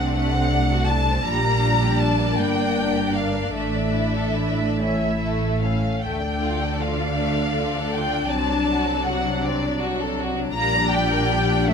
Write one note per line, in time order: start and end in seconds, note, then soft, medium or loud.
0.00 1.21 C2 soft
0.00 1.22 C3 soft
0.00 1.22 A3 soft
0.00 0.15 C4 soft
0.00 1.21 D4 soft
0.00 1.22 D5 soft
0.00 0.15 F#5 medium
0.15 0.34 A3 soft
0.15 0.87 F#5 medium
0.33 0.51 C4 soft
0.51 0.70 D4 soft
0.72 0.89 F#4 soft
0.87 1.07 D4 soft
0.87 1.24 A5 medium
1.09 1.26 C4 soft
1.25 2.36 A#1 soft
1.25 2.36 A#2 soft
1.25 2.35 G3 soft
1.25 1.42 G3 soft
1.25 4.78 D4 soft
1.25 4.79 D5 soft
1.25 2.00 A#5 medium
1.46 1.64 A#3 soft
1.67 1.83 D4 soft
1.83 2.01 G4 soft
1.99 2.19 D4 soft
1.99 2.38 A5 medium
2.18 2.37 A#3 soft
2.37 3.55 G1 soft
2.37 3.55 G2 soft
2.37 2.55 G3 soft
2.37 3.55 A#3 soft
2.37 3.15 G5 medium
2.57 2.76 A#3 soft
2.74 2.94 D4 soft
2.93 3.14 G4 soft
3.13 3.34 D4 soft
3.13 3.55 F5 medium
3.32 3.54 A#3 soft
3.53 5.79 A1 soft
3.53 5.79 A2 soft
3.53 3.73 A3 soft
3.53 8.28 A3 soft
3.53 4.80 E5 soft
3.74 3.96 D4 soft
3.96 4.18 E4 soft
4.17 4.39 A4 soft
4.36 4.60 E4 soft
4.59 4.81 D4 soft
4.80 5.19 C#4 soft
4.80 5.82 E4 soft
4.80 5.62 E5 soft
5.21 5.62 A3 soft
5.62 6.03 C#4 soft
5.62 6.02 F5 soft
6.03 8.28 D2 soft
6.03 8.28 D3 soft
6.03 6.22 A3 soft
6.03 10.51 D4 soft
6.03 10.51 D5 soft
6.03 6.81 G5 soft
6.21 6.41 D4 soft
6.43 6.62 F4 soft
6.62 6.81 A4 soft
6.81 7.00 F4 soft
6.81 7.94 F5 medium
7.00 7.19 D4 soft
7.19 7.38 A3 soft
7.38 7.56 D4 soft
7.57 7.76 F4 soft
7.79 7.96 A4 soft
7.94 8.14 F4 soft
7.94 8.31 G5 medium
8.16 8.33 D4 soft
8.30 10.51 C2 soft
8.30 10.51 C3 soft
8.30 10.51 F#3 soft
8.30 8.50 C4 soft
8.30 9.06 A5 medium
8.53 8.70 D4 soft
8.70 8.88 F#4 soft
8.87 9.06 A4 soft
9.04 9.26 F#4 soft
9.04 9.43 F#5 medium
9.26 9.45 D4 soft
9.44 9.63 C4 soft
9.44 9.81 D5 medium
9.64 9.82 D4 soft
9.80 9.99 F#4 soft
10.01 10.19 A4 soft
10.20 10.37 F#4 soft
10.39 10.56 D4 soft
10.53 11.67 A#1 medium
10.53 11.68 A#2 medium
10.53 11.68 G3 soft
10.53 10.73 A#3 medium
10.53 11.68 D4 medium
10.53 11.68 D5 soft
10.53 10.89 A#5 medium
10.76 10.93 D4 soft
10.91 11.12 G4 soft
10.91 11.69 G5 medium
11.11 11.31 A#4 soft
11.33 11.51 G4 soft
11.53 11.72 D4 soft
11.68 11.74 A1 medium
11.68 11.74 A2 medium
11.68 11.74 A3 medium
11.68 11.74 C#4 soft
11.68 11.74 E5 medium